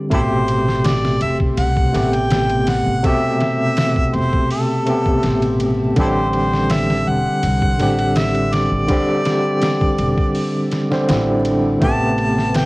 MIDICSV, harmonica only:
0, 0, Header, 1, 2, 480
1, 0, Start_track
1, 0, Tempo, 731707
1, 73, Time_signature, 4, 2, 24, 8
1, 8302, End_track
2, 0, Start_track
2, 0, Title_t, "Harmonica"
2, 0, Program_c, 0, 22
2, 84, Note_on_c, 0, 64, 68
2, 84, Note_on_c, 0, 69, 68
2, 84, Note_on_c, 0, 72, 97
2, 126, Note_off_c, 0, 69, 0
2, 140, Note_off_c, 0, 64, 0
2, 562, Note_on_c, 0, 74, 99
2, 572, Note_off_c, 0, 72, 0
2, 796, Note_off_c, 0, 74, 0
2, 800, Note_on_c, 0, 76, 93
2, 905, Note_off_c, 0, 76, 0
2, 1041, Note_on_c, 0, 78, 105
2, 1404, Note_on_c, 0, 79, 114
2, 1414, Note_off_c, 0, 78, 0
2, 1760, Note_on_c, 0, 78, 98
2, 1770, Note_off_c, 0, 79, 0
2, 2004, Note_on_c, 0, 76, 114
2, 2014, Note_off_c, 0, 78, 0
2, 2721, Note_on_c, 0, 72, 95
2, 2731, Note_off_c, 0, 76, 0
2, 2957, Note_off_c, 0, 72, 0
2, 2962, Note_on_c, 0, 69, 89
2, 3652, Note_off_c, 0, 69, 0
2, 3940, Note_on_c, 0, 64, 68
2, 3940, Note_on_c, 0, 69, 68
2, 3940, Note_on_c, 0, 72, 97
2, 3980, Note_off_c, 0, 69, 0
2, 3993, Note_off_c, 0, 64, 0
2, 4409, Note_on_c, 0, 76, 106
2, 4418, Note_off_c, 0, 72, 0
2, 4650, Note_on_c, 0, 78, 125
2, 4659, Note_off_c, 0, 76, 0
2, 5361, Note_on_c, 0, 76, 109
2, 5371, Note_off_c, 0, 78, 0
2, 5598, Note_on_c, 0, 74, 96
2, 5608, Note_off_c, 0, 76, 0
2, 7036, Note_off_c, 0, 74, 0
2, 7759, Note_on_c, 0, 81, 116
2, 8210, Note_off_c, 0, 81, 0
2, 8243, Note_on_c, 0, 79, 99
2, 8302, Note_off_c, 0, 79, 0
2, 8302, End_track
0, 0, End_of_file